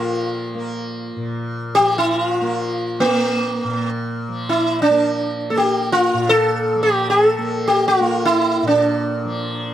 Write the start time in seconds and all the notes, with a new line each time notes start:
Already playing: A#2 F3 A#3 F4
0.55 A#3
1.16 A#2
1.75 F3 G4
1.98 E4
2.25 F4
2.41 A#3
3.00 A#3
3.64 A#2
4.29 F3
4.49 E4
4.82 D4
4.90 A#3
5.50 A#3 A4
5.57 G4
5.92 F4
6.14 A#2
6.29 A4
6.75 F3
6.83 G4
7.10 A4
7.38 A#3
7.68 G4
7.88 F4
8.00 A#3
8.25 E4
8.63 A#2
8.67 D4
9.25 F3